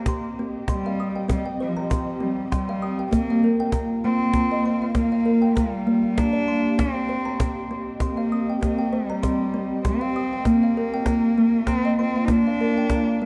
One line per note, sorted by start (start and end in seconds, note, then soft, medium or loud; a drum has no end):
0.00 0.37 A#3 medium
0.00 0.38 C4 medium
0.00 3.09 C4 medium
0.00 3.09 G4 medium
0.00 0.24 C5 medium
0.00 3.09 D#5 medium
0.00 0.24 A#5 medium
0.06 0.55 C6 medium
0.06 cajon bass soft
0.06 cajon slap medium
0.39 0.69 C4 medium
0.68 1.26 G3 medium
0.68 1.16 C6 medium
0.68 cajon bass soft
0.68 cajon slap medium
0.86 1.16 F5 medium
1.00 1.46 D#6 medium
1.16 1.44 G5 medium
1.28 1.44 G3 medium
1.28 1.59 C4 medium
1.28 cajon bass medium
1.28 cajon slap medium
1.46 1.90 G5 medium
1.60 2.24 F3 medium
1.60 2.07 C5 medium
1.77 2.07 A#5 medium
1.77 cajon slap soft
1.90 2.37 C6 medium
1.90 cajon bass medium
1.90 cajon slap medium
2.20 2.51 G3 medium
2.20 2.51 C4 medium
2.52 3.09 G3 medium
2.52 2.99 C6 medium
2.52 cajon bass soft
2.52 cajon slap medium
2.69 2.99 F5 medium
2.82 3.29 D#6 medium
2.99 3.29 G5 medium
3.11 4.03 A#3 medium
3.11 3.70 A#3 medium
3.11 6.76 A#3 medium
3.11 4.95 F4 medium
3.11 6.76 F5 medium
3.11 cajon bass soft
3.11 cajon slap soft
3.30 3.74 F5 medium
3.44 3.91 A#4 medium
3.60 3.90 G5 medium
3.60 cajon slap soft
3.72 4.21 A#5 medium
3.72 cajon bass medium
3.72 cajon slap medium
4.04 4.35 A#3 medium
4.04 4.92 C4 medium
4.33 4.82 A#5 medium
4.33 cajon bass medium
4.33 cajon slap soft
4.51 4.82 D#5 medium
4.66 5.13 C6 medium
4.82 5.11 F5 medium
4.93 5.58 A#3 medium
4.93 5.86 A#3 medium
4.93 6.76 G4 medium
4.93 cajon bass medium
4.93 cajon slap soft
5.12 5.57 F5 medium
5.12 cajon slap soft
5.26 5.73 A#4 medium
5.42 5.73 G5 medium
5.56 6.20 G3 medium
5.56 6.04 A#5 medium
5.56 cajon bass medium
5.56 cajon slap medium
5.73 cajon slap soft
5.87 6.18 A#3 medium
6.04 cajon slap soft
6.18 6.80 D4 loud
6.18 6.65 A#5 medium
6.18 cajon bass medium
6.18 cajon slap medium
6.33 6.65 D5 medium
6.48 6.96 C6 medium
6.78 7.09 C4 medium
6.78 7.71 C4 medium
6.78 10.43 C4 medium
6.78 10.43 G4 medium
6.78 10.43 D#5 medium
6.78 cajon bass medium
6.78 cajon slap medium
7.09 7.57 C5 medium
7.25 7.57 A#5 medium
7.25 cajon slap soft
7.40 7.87 C6 medium
7.40 cajon bass medium
7.40 cajon slap medium
7.71 8.02 C4 medium
8.00 8.49 C6 medium
8.00 cajon bass medium
8.00 cajon slap medium
8.05 8.60 A#3 medium
8.17 8.48 F5 medium
8.32 8.79 D#6 medium
8.50 8.77 G5 medium
8.61 8.94 A#3 medium
8.61 9.53 C4 medium
8.61 cajon bass medium
8.61 cajon slap soft
8.79 9.24 G5 medium
8.93 9.85 G3 medium
8.93 9.40 C5 medium
9.10 9.40 A#5 medium
9.10 cajon slap soft
9.23 9.71 C6 medium
9.23 cajon bass soft
9.23 cajon slap soft
9.54 9.85 C4 medium
9.85 10.47 C4 medium
9.85 10.32 C6 medium
9.85 cajon bass soft
9.85 cajon slap soft
10.01 10.32 F5 medium
10.16 10.63 D#6 medium
10.33 10.63 G5 medium
10.44 13.26 A#3 medium
10.44 11.68 A#3 loud
10.44 11.37 A#3 medium
10.44 13.26 F4 medium
10.44 13.26 F5 medium
10.44 cajon bass soft
10.44 cajon slap soft
10.63 11.08 F5 medium
10.77 11.24 A#4 medium
10.93 11.24 G5 medium
10.93 cajon slap soft
11.06 11.54 A#5 medium
11.06 cajon bass medium
11.06 cajon slap soft
11.38 11.68 A#3 medium
11.67 11.98 C4 medium
11.67 12.15 A#5 medium
11.67 cajon bass soft
11.67 cajon slap soft
11.85 12.16 D#5 medium
11.99 12.26 C4 medium
11.99 12.46 C6 medium
12.16 12.46 F5 medium
12.25 12.32 D#4 medium
12.25 cajon bass medium
12.25 cajon slap soft
12.29 13.20 A#3 medium
12.29 13.26 D4 loud
12.47 12.91 F5 medium
12.61 13.08 A#4 medium
12.78 13.08 G5 medium
12.90 13.26 A#5 medium
12.90 cajon bass soft
12.90 cajon slap medium
13.22 13.26 A#3 medium